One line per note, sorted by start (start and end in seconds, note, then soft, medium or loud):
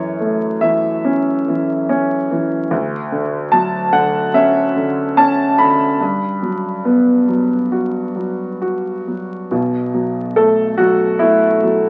0.00 2.68 F#2 medium
0.00 0.61 E3 soft
0.00 0.66 C#5 medium
0.20 1.85 A3 medium
0.61 1.46 E3 soft
0.61 2.26 E5 medium
1.05 1.88 C#4 medium
1.48 2.29 E3 soft
1.89 2.69 C#4 medium
2.31 2.71 E3 soft
2.71 5.96 D2 medium
3.12 3.91 D3 soft
3.52 5.13 F#3 medium
3.52 3.90 A5 medium
3.92 4.75 D3 soft
3.92 4.35 F#5 medium
4.34 5.16 C#4 medium
4.34 5.20 E5 medium
4.76 5.57 D3 soft
5.17 5.97 C#4 medium
5.17 5.60 A5 medium
5.58 5.99 D3 soft
5.58 8.57 B5 medium
6.01 9.47 G2 soft
6.42 7.27 F#3 soft
6.85 8.57 B3 soft
7.28 8.14 F#3 soft
7.72 8.60 F#4 soft
8.15 9.06 F#3 soft
8.62 9.48 F#4 medium
9.08 9.50 F#3 soft
9.51 11.89 B1 soft
9.51 11.89 B2 medium
9.94 10.78 F#3 soft
10.36 11.21 A3 soft
10.36 10.80 A4 medium
10.78 11.62 F#3 soft
10.78 11.21 F#4 medium
11.19 11.89 A3 medium
11.19 11.89 E4 medium
11.63 11.89 F#3 soft